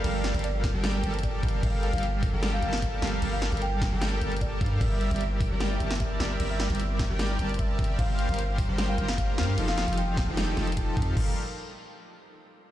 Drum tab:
CC |x-------------------------------|x-------------------------------|x-------------------------------|x-------------------------------|
HH |x---x-xxx---o---x---x-xxx---xx--|x---x-xxx---o---x---x-xxx---xx--|x---x-xxx---o---x---x-xxx---xx--|x---x-xxx---o---x---x-xxx---xx--|
SD |----o-------o---o---------------|----------------o-----o-----o---|----o-------o---o---------------|----------------o-----o-----o---|
BD |------------o-----------o---o---|o-----------o-----------o-------|------------o-----------o---o---|o-----------o-----------o-------|

CC |x-------------------------------|x-------------------------------|x-------------------------------|x-------------------------------|
HH |x---x-xxx---o---x---x-xxx---xx--|x---x-xxx---o---x---x-xxx---xx--|x---x-xxx---o---x---x-xxx---xx--|--------------------------------|
SD |----o-------o---o---------------|----------------o-----o-----o---|--o-o-------o---o---o-----------|--------------------------------|
BD |------------o-----------o---o---|o-----------o-----------o-------|------------o-----------o---o---|o-------------------------------|